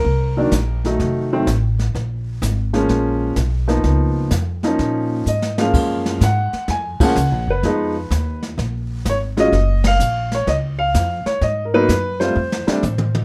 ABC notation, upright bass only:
X:1
M:4/4
L:1/8
Q:"Swing" 1/4=127
K:F#
V:1 name="Upright bass" clef=bass
=C,,2 _B,,,2 =F,,,2 =A,,,2 | A,,,2 G,,,2 A,,,2 B,,,2 | C,,2 E,,2 A,,2 G,,2 | F,,2 G,, z E,, z (3C,, A,,, F,,, |
=F,,2 _E,,2 A,,,2 G,,,2 | F,,,2 A,,,2 C,,2 E,, z | G,,2 F,,2 =F,, z =A,,2 |]